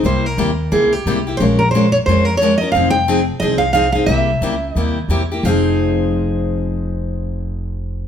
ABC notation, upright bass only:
X:1
M:4/4
L:1/8
Q:"Swing" 1/4=178
K:Fm
V:1 name="Upright bass" clef=bass
C,,2 ^D,,2 _D,,2 C,,2 | B,,,4 F,,4 | F,,,4 C,,4 | C,,2 D,,2 ^D,,2 =E,,2 |
F,,,8- | F,,,8 |]